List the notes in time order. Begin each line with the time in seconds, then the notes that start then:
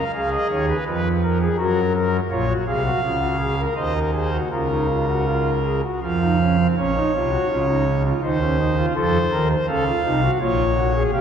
Already playing: F5
0.14 C#2 C#3 G#4 F5
0.32 D#5
0.50 D#2 D#3 C#5
0.69 B4
0.86 F2 F3 B4
1.23 A#4
1.41 G#4
1.58 F#2 F#3 F#4 A#4
1.95 A#4
2.31 A#1 A#2 F4 C#5
2.49 F#4
2.67 C2 C3 G#4 F5
2.86 F#4
3.03 C#2 C#3 F4
3.21 F#4
3.40 G#4
3.58 A#4
3.76 D#2 D#3 C5 D#5
3.95 A#4
4.14 G#4 C5
4.33 F#4
4.51 C#2 C#3 F4 A#4
4.70 D#4
4.89 F4
5.08 F#4
5.27 F4
5.65 G#4
5.84 F#4
6.02 F2 F3 F4 F5
6.22 D#4
6.40 C#4
6.59 C4
6.77 A#1 A#2 C#4 C#5
6.96 D#4
7.14 C2 C3 F4
7.32 F#4
7.50 C#2 C#3 F4
7.68 D#4
7.87 C#4
8.05 F4
8.23 D#2 D#3 D#4 C5
8.41 C#4
8.59 D#4
8.77 F4
8.95 F2 F3 A4 C5
9.32 D#2 D#3 A#4
9.50 C5
9.68 C#2 C#3 A4 F5
9.86 F4
10.05 C2 C3 D#4
10.23 F#4
10.41 A#1 A#2 F4 C#5
10.77 F#4
10.95 G#4
11.13 C2 C3 G4 F5